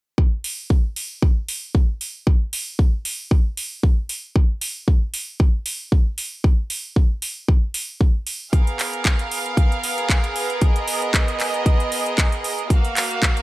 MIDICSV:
0, 0, Header, 1, 3, 480
1, 0, Start_track
1, 0, Tempo, 521739
1, 167, Time_signature, 4, 2, 24, 8
1, 12347, End_track
2, 0, Start_track
2, 0, Title_t, "Violin section"
2, 0, Program_c, 0, 48
2, 7849, Note_on_c, 0, 77, 81
2, 7850, Note_on_c, 0, 59, 73
2, 7850, Note_on_c, 0, 68, 68
2, 7850, Note_on_c, 0, 70, 67
2, 9749, Note_off_c, 0, 77, 0
2, 9772, Note_on_c, 0, 75, 81
2, 11652, Note_off_c, 0, 59, 0
2, 11652, Note_off_c, 0, 68, 0
2, 11652, Note_off_c, 0, 70, 0
2, 11670, Note_off_c, 0, 75, 0
2, 11687, Note_on_c, 0, 77, 83
2, 11688, Note_on_c, 0, 66, 68
2, 11689, Note_on_c, 0, 58, 75
2, 12347, Note_off_c, 0, 58, 0
2, 12347, Note_off_c, 0, 66, 0
2, 12347, Note_off_c, 0, 77, 0
2, 12347, End_track
3, 0, Start_track
3, 0, Title_t, "Drums"
3, 166, Note_on_c, 9, 36, 100
3, 258, Note_off_c, 9, 36, 0
3, 407, Note_on_c, 9, 46, 92
3, 499, Note_off_c, 9, 46, 0
3, 646, Note_on_c, 9, 36, 104
3, 738, Note_off_c, 9, 36, 0
3, 886, Note_on_c, 9, 46, 81
3, 978, Note_off_c, 9, 46, 0
3, 1127, Note_on_c, 9, 36, 103
3, 1219, Note_off_c, 9, 36, 0
3, 1366, Note_on_c, 9, 46, 91
3, 1458, Note_off_c, 9, 46, 0
3, 1607, Note_on_c, 9, 36, 102
3, 1699, Note_off_c, 9, 36, 0
3, 1848, Note_on_c, 9, 46, 78
3, 1940, Note_off_c, 9, 46, 0
3, 2087, Note_on_c, 9, 36, 111
3, 2179, Note_off_c, 9, 36, 0
3, 2327, Note_on_c, 9, 46, 96
3, 2419, Note_off_c, 9, 46, 0
3, 2567, Note_on_c, 9, 36, 105
3, 2659, Note_off_c, 9, 36, 0
3, 2807, Note_on_c, 9, 46, 88
3, 2899, Note_off_c, 9, 46, 0
3, 3047, Note_on_c, 9, 36, 110
3, 3139, Note_off_c, 9, 36, 0
3, 3288, Note_on_c, 9, 46, 98
3, 3380, Note_off_c, 9, 46, 0
3, 3527, Note_on_c, 9, 36, 113
3, 3619, Note_off_c, 9, 36, 0
3, 3765, Note_on_c, 9, 46, 83
3, 3857, Note_off_c, 9, 46, 0
3, 4008, Note_on_c, 9, 36, 109
3, 4100, Note_off_c, 9, 36, 0
3, 4245, Note_on_c, 9, 46, 99
3, 4337, Note_off_c, 9, 46, 0
3, 4487, Note_on_c, 9, 36, 112
3, 4579, Note_off_c, 9, 36, 0
3, 4725, Note_on_c, 9, 46, 88
3, 4817, Note_off_c, 9, 46, 0
3, 4967, Note_on_c, 9, 36, 108
3, 5059, Note_off_c, 9, 36, 0
3, 5204, Note_on_c, 9, 46, 102
3, 5296, Note_off_c, 9, 46, 0
3, 5447, Note_on_c, 9, 36, 112
3, 5539, Note_off_c, 9, 36, 0
3, 5683, Note_on_c, 9, 46, 85
3, 5775, Note_off_c, 9, 46, 0
3, 5926, Note_on_c, 9, 36, 105
3, 6018, Note_off_c, 9, 36, 0
3, 6164, Note_on_c, 9, 46, 96
3, 6256, Note_off_c, 9, 46, 0
3, 6406, Note_on_c, 9, 36, 106
3, 6498, Note_off_c, 9, 36, 0
3, 6643, Note_on_c, 9, 46, 88
3, 6735, Note_off_c, 9, 46, 0
3, 6886, Note_on_c, 9, 36, 109
3, 6978, Note_off_c, 9, 36, 0
3, 7123, Note_on_c, 9, 46, 96
3, 7215, Note_off_c, 9, 46, 0
3, 7366, Note_on_c, 9, 36, 108
3, 7458, Note_off_c, 9, 36, 0
3, 7604, Note_on_c, 9, 46, 84
3, 7696, Note_off_c, 9, 46, 0
3, 7846, Note_on_c, 9, 36, 103
3, 7847, Note_on_c, 9, 42, 57
3, 7938, Note_off_c, 9, 36, 0
3, 7939, Note_off_c, 9, 42, 0
3, 7979, Note_on_c, 9, 42, 34
3, 8071, Note_off_c, 9, 42, 0
3, 8089, Note_on_c, 9, 46, 94
3, 8091, Note_on_c, 9, 39, 54
3, 8181, Note_off_c, 9, 46, 0
3, 8183, Note_off_c, 9, 39, 0
3, 8220, Note_on_c, 9, 42, 35
3, 8312, Note_off_c, 9, 42, 0
3, 8327, Note_on_c, 9, 36, 106
3, 8328, Note_on_c, 9, 42, 59
3, 8331, Note_on_c, 9, 39, 102
3, 8419, Note_off_c, 9, 36, 0
3, 8420, Note_off_c, 9, 42, 0
3, 8423, Note_off_c, 9, 39, 0
3, 8457, Note_on_c, 9, 42, 35
3, 8549, Note_off_c, 9, 42, 0
3, 8569, Note_on_c, 9, 46, 83
3, 8661, Note_off_c, 9, 46, 0
3, 8701, Note_on_c, 9, 42, 34
3, 8793, Note_off_c, 9, 42, 0
3, 8806, Note_on_c, 9, 36, 110
3, 8809, Note_on_c, 9, 42, 55
3, 8898, Note_off_c, 9, 36, 0
3, 8901, Note_off_c, 9, 42, 0
3, 8942, Note_on_c, 9, 42, 33
3, 9034, Note_off_c, 9, 42, 0
3, 9048, Note_on_c, 9, 46, 96
3, 9140, Note_off_c, 9, 46, 0
3, 9180, Note_on_c, 9, 42, 35
3, 9272, Note_off_c, 9, 42, 0
3, 9287, Note_on_c, 9, 36, 106
3, 9289, Note_on_c, 9, 42, 54
3, 9291, Note_on_c, 9, 39, 99
3, 9379, Note_off_c, 9, 36, 0
3, 9381, Note_off_c, 9, 42, 0
3, 9383, Note_off_c, 9, 39, 0
3, 9419, Note_on_c, 9, 42, 33
3, 9511, Note_off_c, 9, 42, 0
3, 9528, Note_on_c, 9, 46, 80
3, 9620, Note_off_c, 9, 46, 0
3, 9659, Note_on_c, 9, 42, 34
3, 9751, Note_off_c, 9, 42, 0
3, 9765, Note_on_c, 9, 42, 61
3, 9767, Note_on_c, 9, 36, 103
3, 9857, Note_off_c, 9, 42, 0
3, 9859, Note_off_c, 9, 36, 0
3, 9898, Note_on_c, 9, 42, 36
3, 9990, Note_off_c, 9, 42, 0
3, 10005, Note_on_c, 9, 46, 96
3, 10097, Note_off_c, 9, 46, 0
3, 10139, Note_on_c, 9, 42, 37
3, 10231, Note_off_c, 9, 42, 0
3, 10247, Note_on_c, 9, 36, 102
3, 10250, Note_on_c, 9, 42, 60
3, 10252, Note_on_c, 9, 39, 104
3, 10339, Note_off_c, 9, 36, 0
3, 10342, Note_off_c, 9, 42, 0
3, 10344, Note_off_c, 9, 39, 0
3, 10380, Note_on_c, 9, 42, 36
3, 10472, Note_off_c, 9, 42, 0
3, 10486, Note_on_c, 9, 46, 80
3, 10488, Note_on_c, 9, 39, 54
3, 10578, Note_off_c, 9, 46, 0
3, 10580, Note_off_c, 9, 39, 0
3, 10618, Note_on_c, 9, 42, 36
3, 10710, Note_off_c, 9, 42, 0
3, 10726, Note_on_c, 9, 36, 103
3, 10727, Note_on_c, 9, 42, 62
3, 10818, Note_off_c, 9, 36, 0
3, 10819, Note_off_c, 9, 42, 0
3, 10858, Note_on_c, 9, 42, 35
3, 10950, Note_off_c, 9, 42, 0
3, 10965, Note_on_c, 9, 46, 94
3, 11057, Note_off_c, 9, 46, 0
3, 11098, Note_on_c, 9, 42, 37
3, 11190, Note_off_c, 9, 42, 0
3, 11206, Note_on_c, 9, 36, 107
3, 11206, Note_on_c, 9, 42, 58
3, 11208, Note_on_c, 9, 39, 99
3, 11298, Note_off_c, 9, 36, 0
3, 11298, Note_off_c, 9, 42, 0
3, 11300, Note_off_c, 9, 39, 0
3, 11338, Note_on_c, 9, 42, 35
3, 11430, Note_off_c, 9, 42, 0
3, 11448, Note_on_c, 9, 46, 81
3, 11540, Note_off_c, 9, 46, 0
3, 11579, Note_on_c, 9, 42, 35
3, 11671, Note_off_c, 9, 42, 0
3, 11686, Note_on_c, 9, 36, 105
3, 11687, Note_on_c, 9, 42, 65
3, 11778, Note_off_c, 9, 36, 0
3, 11779, Note_off_c, 9, 42, 0
3, 11818, Note_on_c, 9, 42, 36
3, 11910, Note_off_c, 9, 42, 0
3, 11928, Note_on_c, 9, 46, 94
3, 11930, Note_on_c, 9, 39, 53
3, 12020, Note_off_c, 9, 46, 0
3, 12022, Note_off_c, 9, 39, 0
3, 12060, Note_on_c, 9, 42, 39
3, 12152, Note_off_c, 9, 42, 0
3, 12166, Note_on_c, 9, 36, 101
3, 12169, Note_on_c, 9, 42, 62
3, 12171, Note_on_c, 9, 39, 107
3, 12258, Note_off_c, 9, 36, 0
3, 12261, Note_off_c, 9, 42, 0
3, 12263, Note_off_c, 9, 39, 0
3, 12299, Note_on_c, 9, 42, 38
3, 12347, Note_off_c, 9, 42, 0
3, 12347, End_track
0, 0, End_of_file